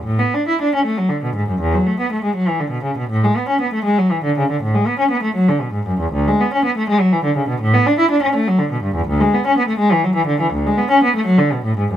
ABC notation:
X:1
M:12/8
L:1/16
Q:3/8=81
K:A
V:1 name="Cello" clef=bass
A,, B, D E D C A, F, D, B,, G,, F,, E,, F, A, B, A, G, F, E, D, B,, C, B,, | A,, G, B, C B, A, G, F, E, D, C, D, A,, G, B, C B, A, F, D, B,, G,, F,, E,, | D,, G, B, C B, A, G, F, E, D, C, B,, A,, B, D E D C A, F, D, B,, =G,, E,, | D,, G, B, C B, A, G, E, F, E, D, E, D,, G, B, C B, A, F, D, B,, A,, G,, F,, |]